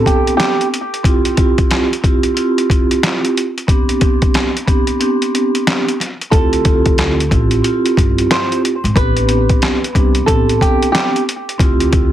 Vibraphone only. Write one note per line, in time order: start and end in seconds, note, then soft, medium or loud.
0.00 0.65 B3 loud
0.00 0.65 C4 medium
0.00 0.66 D4 medium
0.00 0.66 G4 loud
1.03 1.34 C4 loud
1.03 1.35 E4 medium
1.03 1.36 F4 medium
1.03 1.36 G4 loud
1.36 1.85 C4 medium
1.36 1.86 E4 medium
1.36 1.86 F4 medium
1.36 1.86 G4 loud
2.02 2.33 C4 medium
2.02 2.34 E4 medium
2.02 2.34 F4 medium
2.02 2.35 G4 medium
2.34 3.43 C4 medium
2.34 3.44 E4 medium
2.34 3.44 F4 medium
2.34 3.45 G4 loud
3.67 3.99 B3 medium
3.67 3.99 C4 medium
3.67 4.00 D4 medium
3.67 4.00 G4 loud
4.00 4.49 B3 medium
4.00 4.50 C4 medium
4.00 4.50 D4 medium
4.00 4.51 G4 loud
4.66 4.97 B3 medium
4.66 4.98 C4 medium
4.66 4.98 D4 medium
4.66 4.99 G4 loud
4.99 5.93 B3 loud
4.99 5.93 C4 medium
4.99 5.93 D4 medium
4.99 5.94 G4 loud
6.30 6.62 C4 loud
6.30 6.63 E4 medium
6.30 6.63 F4 medium
6.30 6.64 G4 loud
6.63 7.13 C4 loud
6.63 7.13 E4 medium
6.63 7.14 F4 medium
6.63 7.14 G4 loud
7.29 7.61 C4 medium
7.29 7.62 E4 medium
7.29 7.62 F4 medium
7.29 7.62 G4 medium
7.62 8.71 C4 loud
7.62 8.71 E4 medium
7.62 8.72 F4 medium
7.62 8.72 G4 loud
8.94 9.26 B3 medium
8.94 9.26 C4 medium
8.94 9.27 D4 medium
8.94 9.27 G4 loud
9.27 9.77 B3 medium
9.27 9.77 C4 medium
9.27 9.77 D4 medium
9.27 9.78 G4 loud
9.93 10.25 B3 medium
9.93 10.25 C4 medium
9.93 10.26 D4 medium
9.93 10.26 G4 loud
10.27 11.20 B3 medium
10.27 11.20 C4 medium
10.27 11.21 D4 medium
10.27 11.21 G4 loud
11.58 11.90 C4 loud
11.58 11.90 E4 medium
11.58 11.91 F4 medium
11.58 11.91 G4 loud
11.91 12.12 C4 medium
11.91 12.12 E4 medium
11.91 12.12 F4 medium
11.91 12.12 G4 loud